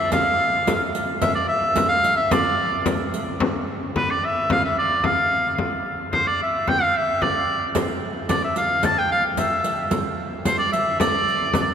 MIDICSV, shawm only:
0, 0, Header, 1, 2, 480
1, 0, Start_track
1, 0, Tempo, 543478
1, 108, Time_signature, 2, 2, 24, 8
1, 10370, End_track
2, 0, Start_track
2, 0, Title_t, "Shawm"
2, 0, Program_c, 0, 111
2, 0, Note_on_c, 0, 76, 88
2, 91, Note_off_c, 0, 76, 0
2, 110, Note_on_c, 0, 77, 89
2, 799, Note_off_c, 0, 77, 0
2, 1074, Note_on_c, 0, 76, 95
2, 1186, Note_off_c, 0, 76, 0
2, 1192, Note_on_c, 0, 74, 76
2, 1306, Note_off_c, 0, 74, 0
2, 1309, Note_on_c, 0, 76, 103
2, 1649, Note_off_c, 0, 76, 0
2, 1665, Note_on_c, 0, 77, 98
2, 1895, Note_off_c, 0, 77, 0
2, 1910, Note_on_c, 0, 76, 85
2, 2050, Note_on_c, 0, 74, 89
2, 2063, Note_off_c, 0, 76, 0
2, 2527, Note_off_c, 0, 74, 0
2, 3501, Note_on_c, 0, 71, 78
2, 3625, Note_on_c, 0, 74, 83
2, 3638, Note_off_c, 0, 71, 0
2, 3751, Note_on_c, 0, 76, 86
2, 3764, Note_off_c, 0, 74, 0
2, 3979, Note_off_c, 0, 76, 0
2, 3993, Note_on_c, 0, 77, 93
2, 4092, Note_off_c, 0, 77, 0
2, 4107, Note_on_c, 0, 76, 83
2, 4209, Note_off_c, 0, 76, 0
2, 4222, Note_on_c, 0, 74, 88
2, 4456, Note_on_c, 0, 77, 85
2, 4470, Note_off_c, 0, 74, 0
2, 4932, Note_off_c, 0, 77, 0
2, 5408, Note_on_c, 0, 72, 78
2, 5536, Note_on_c, 0, 74, 83
2, 5549, Note_off_c, 0, 72, 0
2, 5652, Note_off_c, 0, 74, 0
2, 5674, Note_on_c, 0, 76, 89
2, 5902, Note_on_c, 0, 79, 101
2, 5916, Note_off_c, 0, 76, 0
2, 6024, Note_on_c, 0, 77, 85
2, 6037, Note_off_c, 0, 79, 0
2, 6151, Note_on_c, 0, 76, 91
2, 6164, Note_off_c, 0, 77, 0
2, 6376, Note_on_c, 0, 74, 77
2, 6389, Note_off_c, 0, 76, 0
2, 6850, Note_off_c, 0, 74, 0
2, 7322, Note_on_c, 0, 74, 78
2, 7434, Note_off_c, 0, 74, 0
2, 7453, Note_on_c, 0, 76, 74
2, 7560, Note_off_c, 0, 76, 0
2, 7570, Note_on_c, 0, 77, 83
2, 7811, Note_on_c, 0, 81, 100
2, 7824, Note_off_c, 0, 77, 0
2, 7936, Note_on_c, 0, 79, 87
2, 7949, Note_off_c, 0, 81, 0
2, 8046, Note_off_c, 0, 79, 0
2, 8051, Note_on_c, 0, 77, 85
2, 8157, Note_off_c, 0, 77, 0
2, 8291, Note_on_c, 0, 76, 78
2, 8731, Note_off_c, 0, 76, 0
2, 9240, Note_on_c, 0, 72, 75
2, 9342, Note_off_c, 0, 72, 0
2, 9347, Note_on_c, 0, 74, 86
2, 9462, Note_off_c, 0, 74, 0
2, 9470, Note_on_c, 0, 76, 91
2, 9694, Note_off_c, 0, 76, 0
2, 9719, Note_on_c, 0, 74, 91
2, 10370, Note_off_c, 0, 74, 0
2, 10370, End_track
0, 0, End_of_file